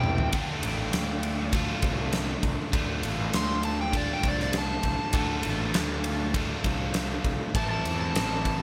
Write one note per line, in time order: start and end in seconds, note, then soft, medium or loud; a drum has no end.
0.00 0.18 C2 medium
0.00 0.32 A2 medium
0.00 0.32 E3 medium
0.00 0.34 A3 medium
0.00 0.35 C4 medium
0.00 0.34 E4 medium
0.00 1.51 G5 loud
0.00 mid tom medium
0.18 0.33 D2 medium
0.18 floor tom medium
0.33 0.60 D2 medium
0.33 1.52 D3 medium
0.33 1.53 A3 medium
0.33 1.55 D4 medium
0.33 1.56 F4 medium
0.33 kick loud
0.33 ride loud
0.63 0.90 A1 medium
0.63 ride medium
0.93 1.72 D2 medium
0.93 snare loud
0.93 ride loud
1.23 ride medium
1.53 2.72 D3 medium
1.53 2.73 A3 medium
1.53 2.74 D4 medium
1.53 2.75 F4 medium
1.53 kick loud
1.53 ride medium
1.82 2.35 C2 medium
1.82 kick medium
1.82 ride medium
2.13 snare loud
2.13 ride medium
2.43 2.57 C2 medium
2.43 kick medium
2.43 ride medium
2.72 3.00 D2 loud
2.72 3.92 D3 medium
2.72 3.94 A3 medium
2.72 3.94 D4 medium
2.72 3.96 F4 medium
2.72 kick loud
2.72 ride medium
3.03 3.30 A1 medium
3.03 ride medium
3.33 4.12 D2 medium
3.33 3.64 C6 medium
3.33 snare loud
3.33 ride medium
3.63 3.79 A5 medium
3.63 ride medium
3.81 3.95 G5 loud
3.93 5.12 D3 medium
3.93 5.14 A3 medium
3.93 5.13 D4 medium
3.93 5.14 F4 medium
3.93 kick loud
3.93 ride medium
3.97 4.10 D5 medium
4.13 4.26 G5 medium
4.23 4.76 C2 medium
4.23 kick medium
4.23 ride medium
4.28 4.41 D5 medium
4.40 4.56 D5 medium
4.40 snare soft
4.53 snare loud
4.53 ride medium
4.58 6.33 A5 loud
4.83 4.97 C2 medium
4.83 kick medium
4.83 ride medium
5.13 5.40 D2 medium
5.13 6.33 D3 medium
5.13 6.35 A3 loud
5.13 6.34 D4 medium
5.13 kick loud
5.13 ride loud
5.17 6.34 F4 loud
5.43 5.71 A1 medium
5.43 ride medium
5.74 6.53 D2 medium
5.74 snare loud
5.74 ride loud
6.04 ride medium
6.34 7.53 D3 medium
6.34 7.54 A3 medium
6.34 7.55 D4 loud
6.34 7.55 F4 medium
6.34 kick loud
6.34 ride loud
6.64 7.17 C2 medium
6.64 kick medium
6.64 ride medium
6.94 snare loud
6.94 ride medium
7.24 7.38 C2 medium
7.24 kick medium
7.24 ride medium
7.55 7.81 A1 loud
7.55 8.62 A2 medium
7.55 8.62 E3 medium
7.55 8.62 A3 medium
7.55 8.62 C4 medium
7.55 8.62 E4 medium
7.55 7.69 A5 medium
7.55 kick loud
7.55 ride medium
7.71 8.00 A5 medium
7.85 8.11 E2 medium
7.85 ride medium
8.01 8.62 A5 medium
8.15 8.62 A1 medium
8.15 snare loud
8.15 ride medium
8.45 kick medium
8.45 ride medium